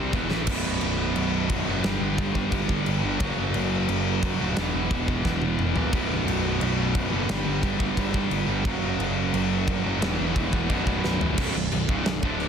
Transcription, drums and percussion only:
0.13 kick loud
0.13 china medium
0.31 snare medium
0.47 kick loud
0.47 crash loud
0.47 crash medium
0.81 crash medium
1.16 crash medium
1.49 kick medium
1.49 crash medium
1.84 snare loud
1.84 crash medium
2.18 kick medium
2.18 crash medium
2.35 kick medium
2.52 kick loud
2.52 crash medium
2.69 kick medium
2.86 crash medium
3.20 kick loud
3.20 crash medium
3.54 crash medium
3.89 crash medium
4.23 kick medium
4.23 crash medium
4.56 snare loud
4.56 crash medium
4.91 kick medium
4.91 crash medium
5.08 kick medium
5.25 kick medium
5.25 snare medium
5.42 high tom medium
5.59 mid tom medium
5.76 floor tom medium
5.93 kick loud
5.93 crash medium
6.28 crash medium
6.61 crash medium
6.95 kick loud
6.95 crash medium
7.29 snare loud
7.29 crash medium
7.63 kick medium
7.63 crash medium
7.80 kick medium
7.97 kick medium
7.97 crash medium
8.14 kick medium
8.31 crash medium
8.65 kick loud
8.65 crash medium
9.00 crash medium
9.34 crash medium
9.68 kick medium
9.68 crash medium
10.02 snare loud
10.02 crash medium
10.36 kick medium
10.36 crash medium
10.53 kick medium
10.70 kick medium
10.70 crash medium
10.87 kick medium
11.04 snare medium
11.21 floor tom medium
11.38 kick loud
11.38 crash loud
11.38 china medium
11.72 china medium
11.89 kick loud
12.06 snare loud
12.06 china medium
12.23 kick loud
12.40 china medium

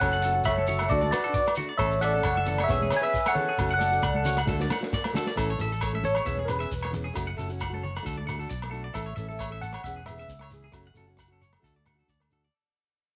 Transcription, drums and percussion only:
0.00 kick medium
0.00 cross-stick medium
0.00 low agogo medium
0.00 shekere medium
0.12 shekere soft
0.22 closed hi-hat soft
0.22 shekere medium
0.44 kick medium
0.44 low agogo medium
0.44 shekere medium
0.48 cross-stick medium
0.58 high conga medium
0.67 closed hi-hat soft
0.67 low conga medium
0.67 shekere medium
0.79 cross-stick medium
0.79 low agogo medium
0.89 kick medium
0.89 shekere medium
1.01 high conga medium
1.01 shekere soft
1.13 cross-stick medium
1.13 closed hi-hat soft
1.13 low conga medium
1.13 low agogo medium
1.13 shekere medium
1.24 shekere soft
1.34 kick medium
1.34 shekere medium
1.46 cross-stick medium
1.46 low agogo medium
1.46 shekere soft
1.55 closed hi-hat soft
1.55 low conga medium
1.55 shekere medium
1.79 kick medium
1.79 cross-stick medium
1.79 low agogo medium
1.79 shekere medium
1.91 shekere soft
2.02 closed hi-hat soft
2.02 shekere medium
2.23 kick medium
2.23 cross-stick medium
2.23 low agogo medium
2.23 shekere medium
2.37 high conga medium
2.46 closed hi-hat medium
2.46 low conga medium
2.46 shekere medium
2.58 cross-stick medium
2.58 low agogo medium
2.69 kick medium
2.69 shekere medium
2.82 high conga medium
2.82 shekere soft
2.90 cross-stick medium
2.90 closed hi-hat medium
2.90 low conga medium
2.90 low agogo medium
2.90 shekere medium
3.04 shekere soft
3.14 kick medium
3.14 shekere medium
3.26 cross-stick medium
3.26 low agogo medium
3.26 shekere soft
3.35 closed hi-hat medium
3.35 low conga medium
3.58 kick medium
3.58 cross-stick medium
3.58 low agogo medium
3.58 shekere medium
3.71 shekere soft
3.81 closed hi-hat medium
3.81 high conga medium
3.81 shekere medium
3.93 shekere soft
4.03 kick medium
4.03 cross-stick medium
4.03 low agogo medium
4.03 shekere medium
4.15 high conga medium
4.25 closed hi-hat soft
4.25 low conga medium
4.25 shekere medium
4.37 cross-stick medium
4.37 low agogo medium
4.37 shekere soft
4.47 kick medium
4.47 snare soft
4.47 high conga medium
4.47 low conga medium
4.47 shekere loud
4.60 snare soft
4.60 high conga medium
4.60 shekere soft
4.70 snare medium
4.70 low conga medium
4.70 low agogo medium
4.70 shekere medium
4.82 snare medium
4.82 shekere soft
4.93 kick medium
4.93 snare medium
4.93 shekere loud
5.04 snare medium
5.04 low agogo medium
5.04 shekere soft
5.14 snare medium
5.14 low conga medium
5.14 shekere medium
5.27 snare medium
5.27 shekere soft
5.37 kick medium
5.37 cross-stick medium
5.37 low agogo medium
5.37 shekere medium
5.59 closed hi-hat soft
5.59 shekere medium
5.72 shekere soft
5.81 kick medium
5.81 cross-stick medium
5.81 low agogo medium
5.81 shekere medium
5.94 high conga medium
6.04 closed hi-hat medium
6.04 low conga medium
6.04 shekere medium
6.15 cross-stick medium
6.15 low agogo medium
6.15 shekere soft
6.26 kick medium
6.26 shekere medium
6.37 high conga medium
6.48 cross-stick medium
6.48 closed hi-hat soft
6.48 low agogo medium
6.48 shekere medium
6.61 shekere soft
6.71 kick medium
6.71 shekere medium
6.83 cross-stick medium
6.83 low agogo medium
6.93 closed hi-hat soft
6.93 low conga medium
6.93 shekere medium
7.16 kick medium
7.16 cross-stick medium
7.16 low agogo medium
7.16 shekere medium
7.38 closed hi-hat soft
7.38 shekere medium
7.50 shekere soft
7.60 kick medium
7.60 cross-stick medium
7.60 low agogo medium
7.60 shekere medium
7.73 high conga medium
7.84 closed hi-hat soft
7.84 low conga medium
7.96 cross-stick medium
7.96 low agogo medium
7.96 shekere soft
8.06 kick medium
8.06 shekere medium
8.17 high conga medium
8.28 cross-stick medium
8.28 closed hi-hat soft
8.28 low agogo medium
8.28 shekere medium
8.40 shekere soft
8.50 kick medium
8.50 shekere medium
8.62 cross-stick medium
8.62 low agogo medium
8.74 closed hi-hat soft
8.95 kick medium
8.95 cross-stick medium
8.95 low agogo medium
8.95 shekere medium
9.17 closed hi-hat soft
9.17 shekere medium
9.30 shekere soft
9.39 kick medium
9.39 cross-stick medium
9.39 low agogo medium
9.39 shekere medium
9.62 closed hi-hat soft
9.62 shekere medium
9.73 cross-stick medium
9.73 low agogo medium
9.73 shekere soft
9.84 kick medium
9.84 shekere medium
10.06 cross-stick medium
10.06 closed hi-hat soft
10.06 low agogo medium
10.06 shekere medium
10.20 shekere soft
10.29 kick medium
10.29 shekere medium
10.39 cross-stick medium
10.39 low agogo medium
10.50 closed hi-hat medium
10.50 shekere medium
10.72 kick medium
10.72 cross-stick medium
10.72 low agogo medium
10.72 shekere medium
10.95 closed hi-hat soft
10.95 shekere medium
11.17 kick medium
11.17 cross-stick medium
11.17 low agogo medium
11.17 shekere medium
11.41 closed hi-hat soft
11.41 shekere medium
11.53 cross-stick medium
11.53 low agogo medium
11.63 kick medium
11.63 shekere medium
11.86 cross-stick medium
11.86 closed hi-hat soft
11.86 low agogo medium
11.86 shekere medium
12.00 shekere soft
12.08 kick medium
12.08 shekere medium
12.20 cross-stick medium
12.20 low agogo medium
12.31 closed hi-hat soft
12.31 shekere medium
12.43 shekere soft

